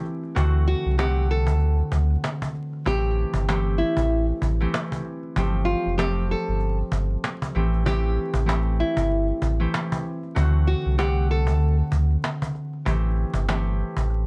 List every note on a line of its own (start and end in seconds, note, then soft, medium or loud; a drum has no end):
0.00 0.41 E3 loud
0.05 cajon slap soft
0.23 cajon slap soft
0.35 0.75 D2 loud
0.35 0.97 D3 loud
0.35 0.94 A3 medium
0.35 0.94 C4 medium
0.35 0.94 F#4 loud
0.35 cajon bass loud
0.53 cajon slap soft
0.67 0.96 F#4 medium
0.67 cajon slap soft
0.86 1.48 C2 medium
0.86 cajon slap soft
0.98 2.91 D3 medium
0.98 2.86 A3 medium
0.98 2.85 C4 medium
0.98 1.27 G4 medium
0.98 2.73 F#5 loud
0.98 cajon slap loud
0.98 cajon slap medium
1.16 cajon slap soft
1.30 1.77 A4 medium
1.30 cajon slap soft
1.47 1.83 D2 loud
1.47 cajon bass medium
1.60 cajon slap soft
1.79 cajon slap soft
1.92 2.17 D2 medium
1.92 cajon bass medium
2.10 cajon slap soft
2.24 cajon slap loud
2.24 cajon slap medium
2.42 cajon bass medium
2.55 cajon slap soft
2.73 cajon slap soft
2.85 3.25 A1 loud
2.85 3.47 E3 medium
2.85 3.44 A3 medium
2.85 3.44 C4 medium
2.85 3.44 G4 loud
2.85 3.76 G4 loud
2.85 cajon bass loud
3.16 cajon slap soft
3.34 3.84 G1 loud
3.34 cajon bass loud
3.48 4.59 E3 medium
3.48 4.61 A3 medium
3.48 4.61 C4 medium
3.48 4.61 G4 loud
3.48 cajon slap loud
3.48 cajon slap medium
3.78 4.25 E4 medium
3.78 cajon slap soft
3.97 4.33 A1 medium
3.97 cajon bass medium
4.10 cajon slap soft
4.29 cajon slap soft
4.42 4.67 A1 loud
4.42 cajon bass medium
4.60 5.41 E3 loud
4.60 5.02 A3 medium
4.60 5.02 C4 medium
4.60 5.02 G4 loud
4.60 cajon slap soft
4.74 cajon slap loud
4.74 cajon slap medium
4.92 cajon bass medium
5.05 cajon slap soft
5.23 cajon slap soft
5.36 5.75 G1 loud
5.36 5.97 F3 loud
5.36 5.95 A3 medium
5.36 5.95 C4 medium
5.36 5.95 G4 loud
5.36 cajon bass loud
5.65 5.94 F4 medium
5.65 cajon slap soft
5.86 6.35 F1 medium
5.86 cajon slap soft
5.97 7.60 F3 medium
5.97 7.55 A3 medium
5.97 7.55 C4 medium
5.97 6.26 G4 medium
5.97 7.55 G4 loud
5.97 cajon slap loud
5.97 cajon slap medium
6.30 6.77 A4 medium
6.30 cajon slap soft
6.48 6.83 G1 medium
6.48 cajon slap soft
6.60 cajon slap soft
6.79 cajon slap soft
6.92 7.17 G1 medium
6.92 cajon bass medium
7.10 cajon slap soft
7.24 cajon slap loud
7.24 cajon slap medium
7.42 cajon bass medium
7.55 8.19 A1 loud
7.55 7.84 E3 loud
7.55 7.84 A3 medium
7.55 7.84 C4 medium
7.55 7.84 G4 loud
7.55 cajon slap soft
7.73 cajon slap soft
7.85 8.45 E3 loud
7.85 8.44 A3 medium
7.85 8.44 C4 medium
7.85 8.76 G4 loud
7.85 8.44 G4 loud
7.85 cajon bass loud
8.16 cajon slap soft
8.34 8.84 A1 medium
8.34 cajon bass loud
8.46 9.58 E3 medium
8.46 9.60 A3 medium
8.46 9.59 C4 medium
8.46 9.60 G4 loud
8.46 cajon slap loud
8.46 cajon slap medium
8.80 9.26 E4 medium
8.80 cajon slap soft
8.97 9.33 G1 medium
8.97 cajon bass loud
9.10 cajon slap soft
9.29 cajon slap soft
9.42 9.67 A1 medium
9.42 cajon bass medium
9.60 10.41 E3 loud
9.60 10.02 A3 medium
9.60 10.02 C4 medium
9.60 10.02 G4 loud
9.60 cajon slap soft
9.74 cajon slap loud
9.74 cajon slap medium
9.92 cajon bass medium
10.05 cajon slap soft
10.23 cajon slap soft
10.35 10.75 D2 loud
10.35 10.97 D3 medium
10.35 10.94 A3 medium
10.35 10.94 C4 medium
10.35 10.94 F#4 loud
10.35 cajon bass loud
10.54 cajon slap soft
10.66 10.96 F#4 medium
10.66 cajon slap soft
10.86 11.48 C2 medium
10.86 cajon slap soft
10.98 12.91 D3 medium
10.98 12.86 A3 medium
10.98 12.85 C4 medium
10.98 11.27 G4 medium
10.98 12.73 F#5 loud
10.98 cajon slap loud
10.98 cajon slap medium
11.16 cajon slap soft
11.30 11.76 A4 medium
11.30 cajon slap soft
11.47 11.83 D2 medium
11.47 cajon bass medium
11.60 cajon slap soft
11.79 cajon slap soft
11.92 12.17 D2 medium
11.92 cajon bass medium
12.11 cajon slap soft
12.24 cajon slap loud
12.24 cajon slap medium
12.42 cajon bass medium
12.55 cajon slap soft
12.73 cajon slap soft
12.85 13.25 A1 loud
12.85 13.47 E3 medium
12.85 13.44 A3 medium
12.85 13.44 C4 medium
12.85 13.44 G4 loud
12.85 cajon bass loud
13.16 cajon slap soft
13.34 13.84 G1 loud
13.34 cajon bass loud
13.48 14.27 E3 medium
13.48 14.27 A3 medium
13.48 14.27 C4 medium
13.48 14.27 G4 loud
13.48 cajon slap loud
13.48 cajon slap medium
13.80 cajon slap soft
13.97 14.27 A1 medium
13.97 cajon bass medium
14.10 cajon slap soft